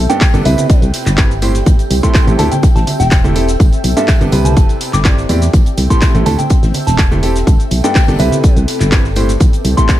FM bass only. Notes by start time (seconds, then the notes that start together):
0.34 G1
0.45 C2
0.82 C2
1.06 G1
1.66 A1
1.91 C2
2.27 A1
2.39 D2
2.76 A1
3.00 E1
3.60 G1
3.84 B1
4.21 G1
4.32 C2
4.57 G1
4.93 G1
5.29 E2
5.54 A1
5.78 C2
6.15 A1
6.26 D2
6.63 A1
6.87 E1
7.47 G1
7.71 B1
8.08 G1
8.20 C2
8.56 C2
8.81 G1
9.40 A1
9.65 C2